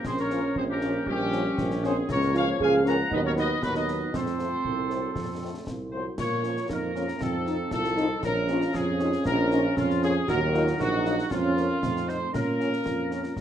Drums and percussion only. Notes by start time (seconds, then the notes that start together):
0.05 concert bass drum, snare, crash
0.17 snare
0.30 snare
0.56 concert bass drum
0.81 snare
1.06 concert bass drum
1.32 snare
1.58 concert bass drum, snare
1.71 snare
1.84 snare
2.09 concert bass drum, snare, crash
2.22 snare
2.35 snare
2.60 concert bass drum
2.86 snare
3.11 concert bass drum
3.37 snare
3.63 concert bass drum, snare
3.75 snare
3.88 snare
4.14 concert bass drum, snare, crash
4.26 snare
4.39 snare
4.65 concert bass drum
4.90 snare
5.16 concert bass drum, snare
5.67 concert bass drum, snare
6.18 concert bass drum, snare, crash
6.44 snare
6.57 snare
6.69 concert bass drum, snare
6.96 snare
7.08 snare
7.21 concert bass drum, snare
7.46 snare
7.71 concert bass drum, snare
7.84 snare
7.97 snare
8.23 concert bass drum, snare, crash
8.48 snare
8.62 snare
8.74 concert bass drum, snare
9.00 snare
9.13 snare
9.26 concert bass drum, snare
9.51 snare
9.77 concert bass drum, snare
9.90 snare
10.03 snare
10.28 concert bass drum, snare, crash
10.54 snare
10.67 snare
10.80 concert bass drum, snare
11.05 snare
11.19 snare
11.31 concert bass drum, snare
11.57 snare
11.83 concert bass drum, snare
11.96 snare
12.09 snare
12.34 concert bass drum, snare, crash
12.60 snare
12.73 snare
12.86 concert bass drum, snare
13.11 snare
13.24 snare
13.37 concert bass drum, snare